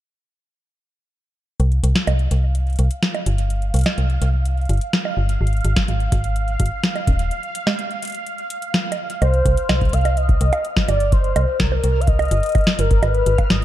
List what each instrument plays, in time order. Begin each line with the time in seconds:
1.60 fm bass C2, synth texture F5, closed hi-hat
1.72 closed hi-hat
1.84 fm bass C2, closed hi-hat
1.96 snare, closed hi-hat
2.07 fm bass C2, closed hi-hat, high bongo
2.19 closed hi-hat
2.31 fm bass C2, closed hi-hat
2.55 closed hi-hat
2.67 closed hi-hat
2.70 closed hi-hat
2.73 closed hi-hat
2.76 closed hi-hat
2.79 fm bass C2, closed hi-hat
2.91 closed hi-hat
3.03 snare, closed hi-hat
3.15 closed hi-hat, high bongo
3.26 fm bass G1, closed hi-hat
3.38 closed hi-hat
3.50 closed hi-hat
3.62 closed hi-hat
3.74 fm bass C2, closed hi-hat
3.76 closed hi-hat
3.79 closed hi-hat
3.81 closed hi-hat
3.84 snare, closed hi-hat, high bongo
3.98 fm bass C2, closed hi-hat
4.10 closed hi-hat
4.22 fm bass C2, closed hi-hat
4.45 closed hi-hat
4.57 closed hi-hat
4.61 closed hi-hat
4.65 closed hi-hat
4.69 fm bass G1, closed hi-hat
4.73 closed hi-hat
4.77 closed hi-hat
4.81 closed hi-hat
4.93 snare, closed hi-hat
5.05 high bongo
5.17 fm bass G1
5.29 closed hi-hat
5.41 fm bass G#1
5.47 closed hi-hat
5.53 closed hi-hat
5.57 closed hi-hat
5.61 closed hi-hat
5.65 fm bass G#1, closed hi-hat
5.76 kick, snare, closed hi-hat
5.88 fm bass G#1, closed hi-hat
6.00 closed hi-hat
6.12 fm bass G#1, kick, closed hi-hat
6.24 closed hi-hat
6.36 closed hi-hat
6.48 closed hi-hat
6.60 fm bass G#1, kick, closed hi-hat
6.66 closed hi-hat
6.84 snare, closed hi-hat
6.96 closed hi-hat, high bongo
7.07 fm bass D#1, kick, closed hi-hat
7.19 closed hi-hat
7.31 closed hi-hat
7.43 closed hi-hat
7.55 closed hi-hat
7.67 snare, high bongo
7.79 closed hi-hat
7.91 closed hi-hat
8.02 closed hi-hat
8.05 closed hi-hat
8.07 closed hi-hat
8.10 closed hi-hat
8.12 closed hi-hat
8.15 closed hi-hat
8.27 closed hi-hat
8.38 closed hi-hat
8.50 closed hi-hat
8.62 closed hi-hat
8.74 snare, closed hi-hat
8.92 closed hi-hat, high bongo
9.10 closed hi-hat
9.22 fm bass C2, soft synth lead C5, synth texture F6, closed hi-hat, high bongo
9.34 closed hi-hat
9.46 fm bass C2, kick, closed hi-hat
9.57 closed hi-hat
9.69 fm bass C2, snare, closed hi-hat, high bongo
9.81 kick, closed hi-hat
9.85 closed hi-hat
9.89 fm bass C2, soft synth lead F5, closed hi-hat
9.93 closed hi-hat
9.97 closed hi-hat
10.01 closed hi-hat
10.05 closed hi-hat, high bongo
10.17 soft synth lead D#5, closed hi-hat
10.29 kick, closed hi-hat
10.41 fm bass C2, closed hi-hat
10.53 closed hi-hat, high bongo
10.65 closed hi-hat
10.77 kick, snare, closed hi-hat
10.88 fm bass G1, soft synth lead D5, closed hi-hat, high bongo
11.00 closed hi-hat
11.12 soft synth lead C5, kick, closed hi-hat
11.24 closed hi-hat
11.36 fm bass C2, closed hi-hat, high bongo
11.60 fm bass C2, soft synth lead A#4, kick, snare, closed hi-hat
11.72 high bongo
11.84 fm bass C2, closed hi-hat
12.00 soft synth lead F5, closed hi-hat
12.07 soft synth lead D#5, kick, closed hi-hat
12.19 closed hi-hat, high bongo
12.22 closed hi-hat
12.25 closed hi-hat
12.28 closed hi-hat
12.31 fm bass G1, closed hi-hat
12.37 closed hi-hat
12.40 closed hi-hat
12.43 closed hi-hat
12.46 closed hi-hat
12.49 closed hi-hat
12.52 closed hi-hat
12.55 kick, closed hi-hat, high bongo
12.61 closed hi-hat
12.64 snare, closed hi-hat
12.67 closed hi-hat
12.79 fm bass G1, soft synth lead A#4, closed hi-hat
12.91 kick, closed hi-hat
13.03 fm bass G#1, soft synth lead B4, closed hi-hat, high bongo
13.14 closed hi-hat
13.26 fm bass G#1, closed hi-hat
13.38 kick, closed hi-hat, high bongo
13.50 fm bass G#1, soft synth lead D#5, snare, closed hi-hat